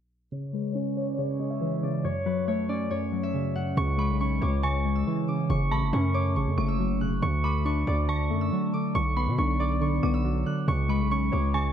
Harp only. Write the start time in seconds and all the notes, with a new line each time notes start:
0.32 C#5
0.53 B4
0.75 C#5
0.96 D5
1.18 C#5
1.50 E5
1.83 D5
2.04 C#5
2.26 B4
2.48 C#5
2.69 D5
2.91 C#5
3.23 E5
3.55 F#5
3.77 C#6
3.99 B5
4.21 C#6
4.42 D6
4.63 C#6
4.95 E6
5.28 D6
5.50 C#6
5.72 B5
5.93 C#6
6.14 D6
6.36 C#6
6.68 E6
7.01 F#6
7.22 C#6
7.44 B5
7.66 C#6
7.87 D6
8.09 C#6
8.41 E6
8.74 D6
8.95 C#6
9.17 B5
9.38 C#6
9.60 D6
9.82 C#6
10.14 E6
10.46 F#6
10.68 C#6
10.89 B5
11.11 C#6
11.33 D6
11.54 C#6